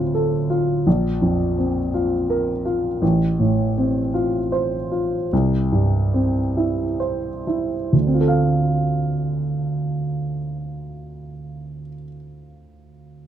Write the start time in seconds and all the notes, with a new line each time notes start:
Already playing: D2 A2 C4 F4
0.14 A4
0.50 F4
0.87 A#1
1.22 F2
1.58 C4
1.94 F4
2.30 A#4
2.66 F4
3.02 A1
3.39 A2
3.78 C4
4.14 F4
4.52 C5
4.92 F4
5.33 C2
5.72 G2
6.14 C4
6.57 E4
7.00 C5
7.47 E4
7.93 D2
8.00 D3
8.07 C4
8.14 F4
8.20 A4
8.28 F5